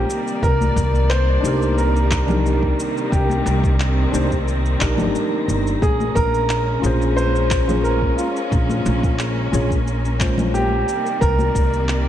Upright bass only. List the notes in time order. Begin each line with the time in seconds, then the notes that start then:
0.43 C2
0.76 C2
1.44 C2
3.12 C2
3.46 C2
4.13 C2
4.81 A#1
4.99 G1
5.48 G1
5.82 A#1
6.16 A#1
6.83 A#1
8.52 A#1
8.86 A#1
9.53 A#1
11.22 C2
11.55 C2